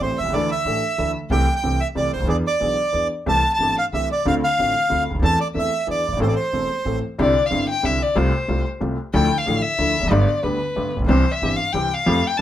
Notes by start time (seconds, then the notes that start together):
0.00 A1 A2 E3 A3 C4 G4 C5
0.18 B1 E5
0.24 C2
0.28 C#2 D2
0.34 D2 D3 E3 A3 D4 A4 D5
0.52 E5
0.65 A1 A2 E3 A3 D4 A4
0.98 D2 D3 E3 A3 D4 A4
1.30 C2 C3 E3 A3 C4 G4 G5
1.55 G5
1.63 C2 C3 E3 A3 C4 G4
1.80 E5
1.95 C2 C3 E3 A3 C4 G4 D5
2.13 C#2 C5
2.20 D2 D#2
2.24 D#2 E2 E3 B3 D4
2.29 E2 G#4 D5
2.47 D5
2.60 B1 B2 E3 B3 D4 G#4
2.92 E2 E3 B3 D4 G#4
3.26 C2 C3 E3 A3 C4 G4 A5
3.54 A5
3.59 G1 G2 E3 A3 C4 G4
3.78 F5
3.92 C2 C3 E3 A3 C4 G4 E5
4.12 D5
4.25 D2 D3 A3 C4 F4 F5
4.44 F5
4.58 A1 A2 D3 A3 C4 F4
4.89 D2 D3 A3 C4 F4
5.10 C#2
5.14 D2
5.19 D#2 E2 E3 A3 C4 A4
5.23 A5
5.40 D5
5.54 E2 E3 A3 C4 A4 E5
5.59 E5
5.87 E2 E3 B3 D4 G#4 D5
6.07 F#1
6.12 G1
6.17 G#1 A1 A2 E3 A3 C4 A4
6.21 C5
6.28 D5
6.35 C5
6.53 E1 E2 E3 A3 C4 A4
6.85 A1 A2 E3 A3 C4 A4
7.18 C2 C3 D3 G3 C4 E4 D5
7.46 F5
7.50 G1 G2 D3 G3 C4 E4
7.69 G5
7.83 C2 C3 D3 G3 C4 E4 E5
8.02 D5
8.16 C2 C3 G3 A3 F4 C5
8.48 C2 C3 G3 A3 F4
8.80 C2 C3 G3 A3 F4
9.14 D2 D3 F3 A3 E4 G5
9.38 F5
9.46 A1 A2 D3 F3 A3 E4
9.62 E5
9.78 D2 D3 F3 A3 E4
9.99 E1 F1 E2
10.03 F#1 F2
10.08 G1 F#2 G2 D3 G3 B3 D5
10.12 G4
10.43 D2 D3 G3 B3 G4 B4
10.76 G1 G2 D3 G3 B3 G4
10.96 A1 A#1
11.02 A#1 B1
11.06 B1 C2 C3 E3 G3 C4 G4 C5
11.32 E5
11.42 G1 G2 E3 G3 C4 G4
11.56 F5
11.72 C2 C3 E3 G3 C4 G4 G5
11.94 F5
12.06 F2 F3 A3 C4 G4
12.27 G5
12.37 A5